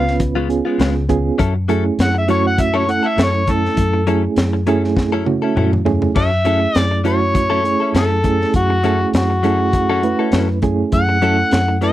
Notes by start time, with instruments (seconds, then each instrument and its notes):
Already playing: fingered electric bass C#2, reed electric piano B3 C#4 F4 B4, harmonica F5
0.06 muted clean electric guitar stroke, snare
0.20 muted clean electric guitar stroke, kick, closed hi-hat
0.35 clean electric guitar C#3 G#3 B3 F4
0.49 reed electric piano B3 C#4 F4 G#4, closed hi-hat
0.65 clean electric guitar G#3 B3 F4
0.78 fingered electric bass C#2, clean electric guitar C#3 G#3 B3 F4, snare, closed hi-hat
0.95 muted clean electric guitar stroke
1.09 reed electric piano B3 C#4 F4 G#4, muted clean electric guitar stroke, kick, closed hi-hat
1.38 fingered electric bass F#2, clean electric guitar F#3 C#4 E4 A4, kick, closed hi-hat
1.55 muted clean electric guitar stroke
1.68 clean electric guitar F#3 C#4 E4 A4, reed electric piano A3 C#4 E4 G#4, closed hi-hat
1.85 muted clean electric guitar stroke
1.99 fingered electric bass F#2, harmonica F#5, snare, closed hi-hat
2.14 harmonica E5, muted clean electric guitar stroke
2.28 clean electric guitar F#3 C#4 E4 A4, reed electric piano A3 C#4 E4 F#4, harmonica C#5, closed hi-hat
2.45 harmonica F#5, muted clean electric guitar stroke
2.58 harmonica E5, muted clean electric guitar stroke, kick, closed hi-hat
2.74 clean electric guitar F#3 C#4 E4 A4, harmonica C#5
2.87 reed electric piano A3 C#4 E4 A4, harmonica F#5, muted clean electric guitar stroke, closed hi-hat
3.03 clean electric guitar C#4 E4 A4
3.08 harmonica E5
3.17 fingered electric bass F#2, clean electric guitar F#3 C#4 E4 A4, snare, closed hi-hat
3.22 harmonica C#5
3.34 muted clean electric guitar stroke
3.47 reed electric piano A3 C#4 E4 A4, harmonica A4, muted clean electric guitar stroke, kick, closed hi-hat
3.65 snare
3.77 fingered electric bass F#2, kick, closed hi-hat
3.93 muted clean electric guitar stroke
4.07 clean electric guitar F#3 C#4 E4 A4, reed electric piano A3 C#4 E4 G#4, closed hi-hat
4.36 fingered electric bass F#2, snare, closed hi-hat
4.53 muted clean electric guitar stroke
4.67 clean electric guitar F#3 C#4 E4 A4, reed electric piano A3 C#4 E4 G#4, closed hi-hat
4.84 muted clean electric guitar stroke, snare
4.96 muted clean electric guitar stroke, kick, snare
5.12 clean electric guitar F#3 C#4 E4 A4
5.26 reed electric piano A3 C#4 E4 F#4, muted clean electric guitar stroke, high tom
5.42 clean electric guitar C#4 E4 A4
5.56 fingered electric bass F#2, clean electric guitar F#3 C#4 E4 A4, mid tom
5.72 muted clean electric guitar stroke, mid tom
5.85 reed electric piano A3 C#4 E4 G#4, muted clean electric guitar stroke, floor tom
6.02 floor tom
6.16 fingered electric bass F#2, clean electric guitar F#3 C#4 E4 A4, harmonica E5, kick, crash
6.31 muted clean electric guitar stroke
6.45 clean electric guitar F#3 C#4 E4 A4, reed electric piano A3 C#4 E4 G#4, closed hi-hat
6.61 muted clean electric guitar stroke
6.75 fingered electric bass F#2, harmonica D5, snare, closed hi-hat
6.91 muted clean electric guitar stroke
7.04 clean electric guitar F#3 C#4 E4 A4, reed electric piano A3 C#4 E4 F#4, harmonica C#5, closed hi-hat
7.21 muted clean electric guitar stroke
7.34 muted clean electric guitar stroke, kick, closed hi-hat
7.50 clean electric guitar F#3 C#4 E4 A4
7.64 reed electric piano A3 C#4 E4 G#4, closed hi-hat
7.80 clean electric guitar C#4 E4 A4
7.94 fingered electric bass F#2, clean electric guitar F#3 C#4 E4 A4, harmonica A4, snare, closed hi-hat
8.11 muted clean electric guitar stroke
8.24 reed electric piano A3 C#4 E4 G#4, muted clean electric guitar stroke, kick, closed hi-hat
8.41 snare
8.54 fingered electric bass F#2, harmonica F#4, kick, closed hi-hat
8.70 muted clean electric guitar stroke
8.83 clean electric guitar F#3 C#4 E4 A4, reed electric piano A3 C#4 E4 G#4, closed hi-hat
9.00 muted clean electric guitar stroke
9.13 fingered electric bass F#2, harmonica F#4, snare, closed hi-hat
9.30 muted clean electric guitar stroke
9.43 clean electric guitar F#3 C#4 E4 A4, reed electric piano A3 C#4 E4 G#4, closed hi-hat
9.60 muted clean electric guitar stroke
9.73 muted clean electric guitar stroke, kick, closed hi-hat
9.90 clean electric guitar F#3 C#4 E4 A4
10.03 reed electric piano A3 C#4 E4 B4, muted clean electric guitar stroke, closed hi-hat
10.19 clean electric guitar C#4 E4 A4
10.32 fingered electric bass F#2, clean electric guitar F#3 C#4 E4 A4, snare, closed hi-hat
10.49 muted clean electric guitar stroke
10.62 reed electric piano A3 C#4 E4 G#4, muted clean electric guitar stroke, kick, closed hi-hat
10.92 fingered electric bass F#2, harmonica F#5, kick, closed hi-hat
11.09 muted clean electric guitar stroke
11.22 clean electric guitar F#3 C#4 E4 A4, reed electric piano A3 C#4 E4 A4, closed hi-hat
11.51 fingered electric bass F#2, snare, closed hi-hat
11.68 muted clean electric guitar stroke
11.81 clean electric guitar F#3 C#4 E4 A4, reed electric piano A3 C#4 E4 B4, harmonica E5, closed hi-hat